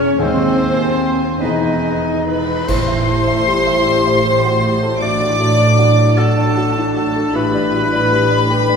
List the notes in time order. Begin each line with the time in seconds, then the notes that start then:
Already playing: E1 E2 G#3 C#4 G#4 C#5 G#5
0.18 D#2 G#3 C4 G#4 C5 D#5 G#5
1.40 E1 E2 B3 D#4 G#4 B4 D#5 G#5
1.44 B4
2.27 B4 B5
2.66 A1 A2 G3 E4 G4 C5 C6, concert bass drum, crash
2.88 E5
3.08 A3
3.27 E5
3.47 G4
3.67 E5
3.86 G4
4.07 E5
4.25 G4
4.45 F#4
4.63 G4
4.83 A4
5.00 A2 F#3 D4 F#4 D5 D6
5.20 D5
5.39 A3 F#4
5.59 D5
5.78 E4 F#4
5.97 D5
6.16 D4 F#4 A4 A5
6.38 D5
6.57 F#4
6.77 E4
6.96 F#4 A4 A5
7.16 A4
7.33 A1 A2 G3 E4 G4 B4 B5
7.54 D5
7.73 G3 F#4
7.93 D5
8.11 G4
8.31 D5
8.48 D4 G4
8.69 D5